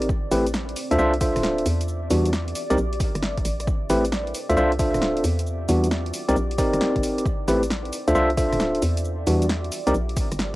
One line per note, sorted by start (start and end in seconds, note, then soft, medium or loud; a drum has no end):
0.00 0.30 A1 medium
0.00 0.38 D5 medium
0.00 cross-stick soft
0.00 closed hi-hat medium
0.09 kick loud
0.09 shaker soft
0.31 0.75 A1 loud
0.31 0.45 A3 medium
0.31 0.45 C4 medium
0.31 0.45 E4 medium
0.31 0.45 G4 medium
0.31 0.45 B4 loud
0.31 open hi-hat loud
0.31 shaker medium
0.47 closed hi-hat medium
0.47 shaker soft
0.54 snare loud
0.54 shaker soft
0.69 closed hi-hat soft
0.76 3.96 D5 medium
0.76 open hi-hat loud
0.76 shaker medium
0.91 0.98 D2 loud
0.91 0.97 D4 medium
0.91 0.97 F4 medium
0.91 0.97 A4 medium
0.91 0.97 C5 medium
0.91 0.97 E5 loud
0.91 closed hi-hat medium
0.91 shaker soft
0.99 1.33 C2 loud
0.99 1.12 D4 medium
0.99 1.12 F4 medium
0.99 1.12 A4 medium
0.99 1.12 C5 medium
0.99 1.12 E5 loud
0.99 shaker soft
1.14 closed hi-hat soft
1.18 1.65 D4 medium
1.18 1.65 F4 medium
1.18 1.65 A4 medium
1.18 1.65 C5 medium
1.18 2.55 E5 medium
1.18 1.65 E5 medium
1.18 kick loud
1.18 open hi-hat loud
1.18 shaker medium
1.36 1.64 D1 medium
1.36 cross-stick medium
1.36 open hi-hat medium
1.36 shaker soft
1.43 snare loud
1.43 shaker soft
1.58 closed hi-hat medium
1.66 2.09 E2 medium
1.66 cross-stick soft
1.66 open hi-hat loud
1.66 shaker medium
1.81 closed hi-hat medium
1.81 shaker soft
1.88 shaker soft
2.11 2.54 E2 loud
2.11 2.29 E3 medium
2.11 2.29 G3 medium
2.11 2.29 B3 medium
2.11 2.29 D4 medium
2.11 2.29 F#4 medium
2.11 open hi-hat loud
2.11 shaker medium
2.26 closed hi-hat medium
2.26 shaker soft
2.33 snare loud
2.33 shaker soft
2.48 closed hi-hat soft
2.55 open hi-hat loud
2.55 shaker medium
2.70 2.77 C2 loud
2.70 2.77 C4 medium
2.70 2.77 D#4 medium
2.70 2.77 G4 medium
2.70 2.77 A#4 medium
2.70 2.77 D5 loud
2.70 closed hi-hat medium
2.70 shaker soft
2.78 3.12 A#1 loud
2.78 shaker soft
2.93 closed hi-hat soft
3.00 kick loud
3.00 open hi-hat loud
3.00 shaker medium
3.15 3.43 G1 medium
3.15 cross-stick medium
3.15 closed hi-hat medium
3.15 shaker soft
3.23 snare loud
3.23 shaker soft
3.38 kick medium
3.38 closed hi-hat medium
3.45 3.88 A1 medium
3.45 cross-stick soft
3.45 open hi-hat loud
3.45 shaker medium
3.60 cross-stick soft
3.60 closed hi-hat medium
3.60 shaker soft
3.67 5.24 C4 medium
3.67 kick loud
3.67 shaker soft
3.90 4.33 A1 loud
3.90 4.03 A3 medium
3.90 4.03 C4 medium
3.90 4.03 E4 medium
3.90 4.03 G4 medium
3.90 4.03 B4 loud
3.90 open hi-hat loud
3.90 shaker medium
4.05 closed hi-hat medium
4.05 shaker soft
4.12 snare loud
4.12 shaker soft
4.27 closed hi-hat soft
4.34 open hi-hat loud
4.34 shaker medium
4.49 4.56 D2 loud
4.49 4.55 D4 medium
4.49 4.55 F4 medium
4.49 4.55 A4 medium
4.49 4.55 C5 medium
4.49 4.55 E5 loud
4.49 closed hi-hat medium
4.49 shaker soft
4.57 4.91 C2 loud
4.57 4.71 D4 loud
4.57 4.71 F4 medium
4.57 4.71 A4 medium
4.57 4.71 C5 medium
4.57 7.54 D5 medium
4.57 4.71 E5 loud
4.57 shaker soft
4.72 closed hi-hat soft
4.79 5.23 D4 medium
4.79 5.23 F4 medium
4.79 5.23 A4 medium
4.79 5.23 C5 medium
4.79 5.23 E5 medium
4.79 kick loud
4.79 open hi-hat loud
4.79 shaker medium
4.94 5.23 D1 medium
4.94 cross-stick medium
4.94 open hi-hat medium
4.94 shaker soft
5.02 snare loud
5.02 shaker soft
5.17 closed hi-hat medium
5.24 5.67 E2 medium
5.24 cross-stick soft
5.24 open hi-hat loud
5.24 shaker medium
5.37 6.58 G4 medium
5.37 closed hi-hat medium
5.37 shaker soft
5.46 shaker soft
5.69 6.12 E2 loud
5.69 5.87 E3 medium
5.69 5.87 G3 medium
5.69 5.87 B3 medium
5.69 5.87 D4 medium
5.69 5.87 F#4 medium
5.69 open hi-hat medium
5.69 shaker medium
5.84 closed hi-hat medium
5.84 shaker soft
5.91 snare loud
5.91 shaker soft
6.06 closed hi-hat soft
6.14 open hi-hat loud
6.14 shaker medium
6.29 6.35 C2 loud
6.29 6.35 C4 medium
6.29 6.35 D#4 medium
6.29 6.35 G4 medium
6.29 6.35 A#4 medium
6.29 6.35 D5 loud
6.29 closed hi-hat medium
6.29 shaker soft
6.36 6.70 A#1 medium
6.36 shaker soft
6.51 closed hi-hat soft
6.58 7.25 C4 medium
6.58 7.25 D#4 medium
6.58 7.25 G4 medium
6.58 7.25 A#4 medium
6.58 7.25 D5 medium
6.58 kick loud
6.58 open hi-hat loud
6.58 shaker medium
6.73 6.80 G1 medium
6.73 cross-stick medium
6.73 closed hi-hat medium
6.73 shaker soft
6.81 snare loud
6.81 shaker soft
6.96 7.02 G1 medium
6.96 kick medium
6.96 closed hi-hat medium
7.03 cross-stick soft
7.03 open hi-hat loud
7.03 shaker medium
7.18 cross-stick soft
7.18 closed hi-hat medium
7.18 shaker soft
7.26 kick loud
7.26 shaker soft
7.48 7.91 A1 loud
7.48 7.62 A3 medium
7.48 7.62 C4 medium
7.48 7.62 E4 medium
7.48 7.62 G4 medium
7.48 7.62 B4 loud
7.48 open hi-hat loud
7.48 shaker medium
7.63 closed hi-hat medium
7.63 shaker soft
7.70 snare loud
7.70 shaker soft
7.85 closed hi-hat soft
7.93 10.55 D5 medium
7.93 open hi-hat loud
7.93 shaker medium
8.08 8.14 D2 loud
8.08 8.13 D4 medium
8.08 8.13 F4 medium
8.08 8.13 A4 medium
8.08 8.13 C5 medium
8.08 8.13 E5 loud
8.08 closed hi-hat medium
8.08 shaker soft
8.15 8.50 C2 medium
8.15 8.29 D4 medium
8.15 8.29 F4 medium
8.15 8.29 A4 medium
8.15 8.29 C5 medium
8.15 8.29 E5 loud
8.15 shaker soft
8.30 closed hi-hat soft
8.35 8.81 D4 medium
8.35 8.81 F4 medium
8.35 8.81 A4 medium
8.35 8.81 C5 medium
8.35 9.72 E5 medium
8.35 8.81 E5 medium
8.35 kick loud
8.35 open hi-hat loud
8.35 shaker medium
8.53 8.81 D1 medium
8.53 cross-stick medium
8.53 open hi-hat medium
8.53 shaker soft
8.60 snare loud
8.60 shaker soft
8.75 closed hi-hat medium
8.82 9.26 E2 medium
8.82 cross-stick soft
8.82 open hi-hat medium
8.82 shaker medium
8.97 closed hi-hat medium
8.97 shaker soft
9.05 shaker soft
9.27 9.70 E2 loud
9.27 9.45 E3 medium
9.27 9.45 G3 medium
9.27 9.45 B3 medium
9.27 9.45 D4 medium
9.27 9.45 F#4 medium
9.27 open hi-hat loud
9.27 shaker medium
9.42 closed hi-hat medium
9.42 shaker soft
9.49 snare loud
9.49 shaker soft
9.64 closed hi-hat soft
9.72 open hi-hat loud
9.72 shaker medium
9.87 9.93 C2 loud
9.87 9.94 C4 medium
9.87 9.94 D#4 medium
9.87 9.94 G4 medium
9.87 9.94 A#4 medium
9.87 9.94 D5 loud
9.87 closed hi-hat medium
9.87 shaker soft
9.94 10.29 A#1 loud
9.94 shaker soft
10.09 closed hi-hat soft
10.17 kick loud
10.17 open hi-hat loud
10.17 shaker medium
10.32 10.55 G1 medium
10.32 cross-stick medium
10.32 closed hi-hat medium
10.32 shaker soft
10.39 snare loud
10.39 shaker soft